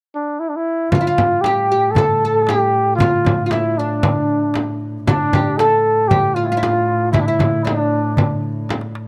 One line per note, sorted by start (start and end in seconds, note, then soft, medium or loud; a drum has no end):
0.15 0.41 D4 medium
0.40 0.50 E4 medium
0.49 0.57 D4 medium
0.56 0.93 E4 medium
0.91 5.06 A2 medium
0.91 1.43 F4 medium
0.91 1.00 F4 medium
0.91 frame drum medium
0.91 darbuka dum medium
1.01 1.07 E4 medium
1.07 1.45 F4 medium
1.18 frame drum medium
1.41 1.92 G4 medium
1.41 darbuka tek medium
1.41 frame drum medium
1.46 1.70 G4 medium
1.72 1.98 G4 medium
1.91 2.44 A4 loud
1.95 2.24 A4 medium
1.95 darbuka dum medium
1.95 frame drum medium
2.21 2.49 A4 medium
2.21 darbuka ka soft
2.43 2.95 G4 medium
2.47 2.97 G4 medium
2.47 darbuka tek medium
2.47 frame drum medium
2.74 darbuka ka soft
2.96 3.46 F4 medium
2.96 darbuka dum medium
3.00 3.45 F4 medium
3.00 frame drum medium
3.25 darbuka dum medium
3.25 frame drum medium
3.46 3.52 F4 medium
3.46 3.52 F4 soft
3.51 3.79 E4 medium
3.51 darbuka tek medium
3.51 frame drum medium
3.78 4.81 D4 medium
3.78 4.78 D4 medium
4.03 frame drum medium
4.03 darbuka dum medium
4.30 darbuka ka soft
4.54 darbuka tek medium
4.54 frame drum medium
4.81 darbuka ka soft
5.07 9.08 A2 medium
5.07 5.59 D4 medium
5.07 5.35 D4 medium
5.07 darbuka dum medium
5.07 frame drum medium
5.33 5.60 G4 medium
5.33 frame drum medium
5.33 darbuka dum medium
5.58 6.10 A4 medium
5.58 6.11 A4 medium
5.58 darbuka tek medium
5.58 frame drum medium
6.08 6.36 G4 medium
6.08 darbuka dum medium
6.08 frame drum medium
6.34 6.45 F4 medium
6.34 6.51 F4 medium
6.44 6.48 E4 medium
6.44 7.11 F4 medium
6.52 6.57 F4 medium
6.57 6.63 E4 medium
6.63 7.13 F4 medium
6.63 darbuka tek medium
6.63 frame drum medium
6.88 darbuka ka soft
7.12 7.22 E4 medium
7.12 7.27 E4 medium
7.12 darbuka dum medium
7.12 frame drum medium
7.20 7.28 D4 medium
7.26 7.65 E4 medium
7.26 7.67 E4 medium
7.39 darbuka dum medium
7.39 frame drum medium
7.64 8.43 D4 medium
7.64 8.40 D4 medium
7.64 darbuka tek medium
7.64 frame drum medium
7.92 darbuka ka soft
8.05 darbuka ka soft
8.17 darbuka dum medium
8.17 frame drum medium
8.43 darbuka ka soft
8.69 darbuka tek medium
8.69 frame drum medium
8.81 darbuka ka medium
8.95 darbuka tek medium